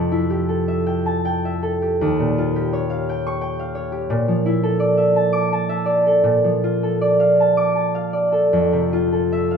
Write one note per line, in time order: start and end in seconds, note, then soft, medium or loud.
0.00 2.03 F2 medium
0.00 2.04 C3 soft
0.00 0.47 A4 soft
0.00 2.89 F5 soft
0.00 0.85 G5 soft
0.00 1.05 A5 soft
0.12 2.03 E4 soft
0.30 1.81 G4 soft
0.49 1.61 A4 soft
0.68 1.44 E5 soft
0.86 1.24 G5 soft
1.06 2.03 A5 medium
1.25 3.08 G5 medium
1.45 2.03 E5 soft
1.63 2.03 A4 soft
1.82 2.55 G4 soft
2.01 4.15 D#2 medium
2.19 4.09 A#2 soft
2.38 6.28 F4 medium
2.56 3.91 G4 soft
2.73 3.74 C#5 soft
2.90 3.58 F5 medium
3.09 3.40 G5 medium
3.27 4.15 C#6 medium
3.41 4.14 G5 medium
3.59 7.19 F5 medium
3.75 4.13 C#5 medium
3.92 4.13 G4 soft
4.10 6.22 A#2 medium
4.28 6.43 F3 soft
4.46 6.29 E4 medium
4.63 6.06 A4 soft
4.80 5.84 D5 medium
4.97 5.68 E5 soft
5.16 5.51 A5 medium
5.33 7.56 D6 medium
5.53 7.39 A5 medium
5.69 6.28 E5 soft
5.86 7.00 D5 soft
6.07 6.82 A4 soft
6.24 8.56 A#2 medium
6.44 9.57 F3 soft
6.64 8.92 F4 soft
6.83 8.31 A4 soft
7.01 8.12 D5 medium
7.20 7.94 F5 soft
7.40 7.74 A5 medium
7.57 8.57 D6 medium
7.75 9.57 A5 soft
7.95 9.50 F5 soft
8.13 8.56 D5 soft
8.32 9.11 A4 soft
8.53 9.57 F2 medium
8.73 9.57 C3 soft
8.93 9.57 F4 medium
9.12 9.57 A4 soft
9.32 9.57 E5 soft
9.51 9.57 F5 medium